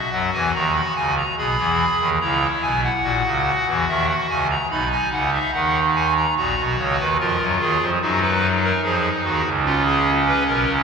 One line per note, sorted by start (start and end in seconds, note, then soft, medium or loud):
0.00 1.15 F#4 medium
0.11 0.30 F#2 medium
0.11 0.30 F#3 medium
0.11 0.30 F#5 medium
0.33 0.52 E2 medium
0.33 0.52 E3 medium
0.33 0.52 G#5 medium
0.54 0.81 D#2 medium
0.54 0.81 D#3 medium
0.54 0.73 A#5 medium
0.75 0.94 B5 medium
0.96 1.22 C#2 medium
0.96 1.22 C#3 medium
0.96 1.14 G#5 medium
1.17 1.35 A#5 medium
1.38 1.56 B1 medium
1.38 1.56 B2 medium
1.38 2.10 G#4 medium
1.38 2.10 B5 medium
1.59 1.85 E2 medium
1.59 1.85 E3 medium
2.00 2.19 D#2 medium
2.00 2.18 D#3 medium
2.21 2.47 C#2 medium
2.21 2.47 C#3 medium
2.21 2.93 E4 medium
2.21 2.47 A#5 medium
2.62 2.88 B1 medium
2.62 2.88 B2 medium
2.62 2.81 G#5 medium
2.83 3.73 F#5 medium
3.04 3.22 A#1 medium
3.04 3.22 A#2 medium
3.04 4.47 F#4 medium
3.25 3.51 C#2 medium
3.25 3.51 C#3 medium
3.67 3.85 E2 medium
3.67 3.85 E3 medium
3.88 4.14 D#2 medium
3.88 4.14 D#3 medium
3.88 4.06 E5 medium
4.09 4.27 F#5 medium
4.30 4.55 C#2 medium
4.30 4.55 C#3 medium
4.30 4.47 G#5 medium
4.50 4.68 A#5 medium
4.71 4.97 B1 medium
4.71 4.97 B2 medium
4.71 6.14 D#4 medium
4.71 4.89 B5 medium
4.92 5.09 G#5 medium
5.12 5.38 C#2 medium
5.12 5.38 C#3 medium
5.12 5.30 F#5 medium
5.33 5.51 E5 medium
5.54 6.26 D#2 medium
5.54 6.26 D#3 medium
5.54 5.80 F#5 medium
5.95 6.13 G#5 medium
6.16 6.34 A#5 medium
6.37 6.55 A#1 medium
6.37 6.55 A#2 medium
6.37 7.08 F#4 medium
6.37 6.63 A#5 medium
6.58 6.76 B1 medium
6.58 6.76 B2 medium
6.78 6.96 C#2 medium
6.78 6.96 C#3 medium
6.78 6.96 C#5 medium
6.99 7.17 D#2 medium
6.99 7.17 D#3 medium
6.99 7.17 B4 loud
7.19 7.38 F2 medium
7.19 7.38 F3 medium
7.19 7.90 F4 medium
7.19 7.45 A#4 medium
7.40 7.58 F#2 medium
7.40 7.58 F#3 medium
7.60 7.78 D#2 medium
7.60 7.78 D#3 medium
7.60 7.86 G#4 medium
7.81 7.99 F2 medium
7.81 7.99 F3 medium
8.01 8.72 F#2 medium
8.01 8.72 F#3 medium
8.01 9.42 D#4 medium
8.01 8.19 F#4 medium
8.22 8.47 B4 medium
8.63 8.81 A#4 medium
8.84 9.09 F2 medium
8.84 9.09 F3 medium
8.84 9.09 G#4 medium
9.24 9.42 D#2 medium
9.24 9.42 D#3 medium
9.24 9.49 F#4 medium
9.44 10.32 C#2 medium
9.44 10.32 C#3 medium
9.65 10.83 C#4 medium
9.65 9.83 F4 loud
9.86 10.11 G#4 medium
10.26 10.44 B4 medium
10.47 10.64 B1 medium
10.47 10.65 B2 medium
10.47 10.72 A#4 loud
10.68 10.83 C#2 medium
10.68 10.83 C#3 medium